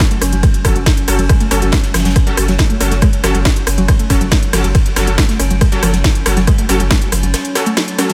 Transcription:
Already playing: synth drone F#3 C#4
0.00 snare, ride
0.11 synth arpeggio sound A3, closed hi-hat, ride
0.21 sub bass F#1, synth arpeggio sound C#4, cross-stick, open hi-hat, ride
0.32 sub bass F#1, synth arpeggio sound F#3, closed hi-hat
0.43 synth arpeggio sound G#3, kick, cross-stick, closed hi-hat, ride
0.54 closed hi-hat
0.65 sub bass F#1, synth arpeggio sound F3, synth stab F#3 C#4 A4, kick, cross-stick, open hi-hat, ride
0.76 sub bass F#1, synth arpeggio sound F#3, closed hi-hat
0.86 kick, cross-stick, snare, closed hi-hat, ride
0.97 closed hi-hat
1.07 sub bass F#1, synth stab F#3 C#4 A4, cross-stick, open hi-hat, ride
1.19 sub bass F#1, synth arpeggio sound F#3, closed hi-hat
1.29 synth arpeggio sound G#3, kick, cross-stick, closed hi-hat, ride
1.40 synth arpeggio sound A3, closed hi-hat
1.51 sub bass F#1, synth stab F#3 C#4 A4, synth arpeggio sound C#4, cross-stick, open hi-hat, ride
1.62 sub bass F#1, synth arpeggio sound F#3, closed hi-hat
1.72 synth arpeggio sound G#3, kick, cross-stick, snare, closed hi-hat, ride
1.83 snare, closed hi-hat
1.94 sub bass F#1, synth arpeggio sound F3, cross-stick, snare, open hi-hat, ride
2.00 snare, ride
2.05 sub bass F#1, synth arpeggio sound F#3, snare, closed hi-hat, ride
2.10 snare, ride
2.16 kick, cross-stick, closed hi-hat, ride
2.27 synth stab F#3 C#4 A4, closed hi-hat
2.37 sub bass F#1, cross-stick, open hi-hat, ride
2.48 sub bass F#1, synth arpeggio sound F#3, snare, closed hi-hat
2.58 synth arpeggio sound G#3, kick, cross-stick, snare, closed hi-hat, ride
2.70 synth arpeggio sound A3, closed hi-hat
2.80 sub bass F#1, synth stab F#3 C#4 A4, synth arpeggio sound C#4, cross-stick, open hi-hat, ride
2.91 sub bass F#1, synth arpeggio sound F#3, snare, closed hi-hat
3.01 synth arpeggio sound G#3, kick, cross-stick, closed hi-hat, ride
3.13 closed hi-hat
3.24 sub bass F#1, synth arpeggio sound F3, synth stab F#3 C#4 A4, cross-stick, open hi-hat, ride
3.35 sub bass F#1, synth arpeggio sound F#3, closed hi-hat
3.45 kick, cross-stick, snare, closed hi-hat, ride
3.56 closed hi-hat, ride
3.67 sub bass F#1, cross-stick, open hi-hat, ride
3.78 sub bass F#1, synth arpeggio sound F#3, closed hi-hat
3.88 synth arpeggio sound G#3, kick, cross-stick, closed hi-hat, ride
3.99 synth arpeggio sound A3, closed hi-hat
4.10 sub bass F#1, synth stab F#3 C#4 A4, synth arpeggio sound C#4, kick, cross-stick, open hi-hat, ride
4.21 sub bass F#1, synth arpeggio sound F#3, closed hi-hat
4.31 synth arpeggio sound G#3, kick, cross-stick, snare, closed hi-hat, ride
4.43 closed hi-hat
4.53 sub bass F#1, synth arpeggio sound F3, synth stab F#3 C#4 A4, cross-stick, open hi-hat, ride
4.64 sub bass F#1, synth arpeggio sound F#3, closed hi-hat
4.75 kick, cross-stick, closed hi-hat, ride
4.86 closed hi-hat
4.96 sub bass F#1, synth stab F#3 C#4 A4, cross-stick, open hi-hat, ride
5.07 sub bass F#1, synth arpeggio sound F#3, closed hi-hat
5.18 synth arpeggio sound G#3, kick, cross-stick, snare, closed hi-hat, ride
5.29 synth arpeggio sound A3, snare, closed hi-hat
5.39 sub bass F#1, synth arpeggio sound C#4, cross-stick, open hi-hat, ride
5.51 sub bass F#1, synth arpeggio sound F#3, closed hi-hat
5.61 synth arpeggio sound G#3, kick, cross-stick, closed hi-hat, ride
5.72 synth stab F#3 C#4 A4, closed hi-hat
5.83 sub bass F#1, synth arpeggio sound F3, cross-stick, open hi-hat, ride
5.93 sub bass F#1, synth arpeggio sound F#3, snare, closed hi-hat
6.04 kick, cross-stick, snare, closed hi-hat, ride
6.15 closed hi-hat
6.26 sub bass F#1, synth stab F#3 C#4 A4, cross-stick, open hi-hat, ride
6.37 sub bass F#1, synth arpeggio sound F#3, snare, closed hi-hat
6.47 synth arpeggio sound G#3, kick, cross-stick, closed hi-hat, ride
6.58 synth arpeggio sound A3, closed hi-hat
6.69 sub bass F#1, synth stab F#3 C#4 A4, synth arpeggio sound C#4, cross-stick, open hi-hat, ride
6.80 sub bass F#1, synth arpeggio sound F#3, closed hi-hat
6.91 synth arpeggio sound G#3, kick, cross-stick, snare, closed hi-hat, ride
7.02 closed hi-hat, ride
7.12 sub bass F#1, synth arpeggio sound F3, cross-stick, open hi-hat, ride
7.23 sub bass F#1, synth arpeggio sound F#3, closed hi-hat
7.33 cross-stick, snare, closed hi-hat, ride
7.45 closed hi-hat
7.55 synth stab F#3 C#4 A4, cross-stick, snare, open hi-hat, ride
7.66 synth arpeggio sound A3, closed hi-hat
7.77 synth arpeggio sound F#3, cross-stick, snare, closed hi-hat, ride
7.87 closed hi-hat, ride
7.98 synth stab F#3 C#4 A4, synth arpeggio sound C#4, cross-stick, snare, open hi-hat, ride
8.09 synth arpeggio sound F#3, snare, closed hi-hat, ride

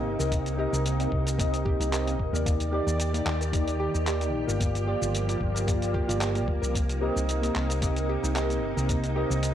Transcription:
Already playing: string machine C3 A#3 D#4, synth keys C4 G4 A#4 D#5
0.05 fingered electric bass G1
0.18 fingered electric bass C2, synth keys C4 G4 A#4 D#5, synth pluck A#4, shaker
0.31 synth pluck A#3, kick, closed hi-hat, shaker
0.46 closed hi-hat, shaker
0.57 synth keys C4 G4 A#4 D#5, synth pluck G4
0.73 fingered electric bass C2, synth pluck D#4, shaker
0.86 closed hi-hat, shaker
0.99 synth pluck A#3, synth keys C4 G4 A#4 D#5, closed hi-hat, shaker
1.12 fingered electric bass C2, kick
1.26 synth pluck A#4, closed hi-hat, shaker
1.38 synth pluck A#3, synth keys C4 G4 A#4 D#5, kick, closed hi-hat, shaker
1.54 closed hi-hat, shaker
1.65 synth pluck G4, kick
1.80 fingered electric bass C2, synth pluck D#4, closed hi-hat, shaker
1.91 synth keys C4 G4 A#4 D#5, clap, closed hi-hat, shaker
2.07 synth pluck A#3, closed hi-hat, shaker
2.19 fingered electric bass G1, kick
2.32 fingered electric bass D#2, synth keys A#3 D#4 G4 D5, synth pluck A#4, shaker
2.46 string machine D#3 G4 D5, synth pluck A#3, kick, closed hi-hat, shaker
2.60 closed hi-hat, shaker
2.71 synth keys A#3 D#4 G4 D5, synth pluck G4
2.87 fingered electric bass D#2, synth pluck D#4, shaker
3.00 closed hi-hat, shaker
3.13 synth keys A#3 D#4 G4 D5, synth pluck A#3, closed hi-hat, shaker
3.26 fingered electric bass D#2, clap
3.41 synth pluck A#4, closed hi-hat, shaker
3.52 synth keys A#3 D#4 G4 D5, synth pluck A#3, kick, closed hi-hat, shaker
3.68 closed hi-hat, shaker
3.80 synth pluck G4
3.94 fingered electric bass D#2, synth pluck D#4, shaker
4.06 synth keys A#3 D#4 G4 D5, clap, closed hi-hat, shaker
4.21 synth pluck A#3, closed hi-hat, shaker
4.34 fingered electric bass A#1
4.46 fingered electric bass G1, synth keys A#3 F4 G4 D5, synth pluck A#4, shaker
4.60 string machine F3 A#3, synth pluck A#3, kick, closed hi-hat, shaker
4.75 closed hi-hat, shaker
4.86 synth keys A#3 F4 G4 D5, synth pluck G4
5.01 fingered electric bass G1, synth pluck F4, shaker
5.15 closed hi-hat, shaker
5.27 synth keys A#3 F4 G4 D5, synth pluck A#3, closed hi-hat, shaker
5.41 fingered electric bass G1, kick
5.55 synth pluck A#4, closed hi-hat, shaker
5.67 synth keys A#3 F4 G4 D5, synth pluck A#3, kick, closed hi-hat, shaker
5.82 closed hi-hat, shaker
5.93 synth keys A#3 F4 G4 D5, synth pluck G4, kick
6.07 fingered electric bass G1, synth keys A#3 F4 G4 D5, synth pluck F4, closed hi-hat, shaker
6.21 clap, closed hi-hat, shaker
6.35 synth keys A#3 F4 G4 D5, synth pluck A#3, closed hi-hat, shaker
6.48 fingered electric bass D2, kick
6.62 fingered electric bass C2, synth pluck A#4, shaker
6.74 string machine C3 D#4, synth pluck A#3, kick, closed hi-hat, shaker
6.89 closed hi-hat, shaker
7.00 synth keys C4 G4 A#4 D#5, synth pluck G4
7.15 fingered electric bass C2, synth pluck D#4, shaker
7.29 closed hi-hat, shaker
7.42 synth pluck A#3, synth keys C4 G4 A#4 D#5, closed hi-hat, shaker
7.55 fingered electric bass C2, clap
7.69 synth pluck A#4, closed hi-hat, shaker
7.81 synth pluck A#3, synth keys C4 G4 A#4 D#5, kick, closed hi-hat, shaker
7.96 closed hi-hat, shaker
8.09 synth pluck G4
8.23 fingered electric bass C2, synth pluck D#4, shaker
8.34 synth keys C4 G4 A#4 D#5, clap, closed hi-hat, shaker
8.50 synth pluck A#3, closed hi-hat, shaker
8.62 fingered electric bass G1
8.76 fingered electric bass C2, synth keys C4 G4 A#4 D#5, synth pluck A#4, shaker
8.89 synth pluck A#3, kick, closed hi-hat, shaker
9.04 closed hi-hat, shaker
9.15 synth keys C4 G4 A#4 D#5, synth pluck G4
9.30 fingered electric bass C2, synth pluck D#4, shaker
9.43 closed hi-hat, shaker

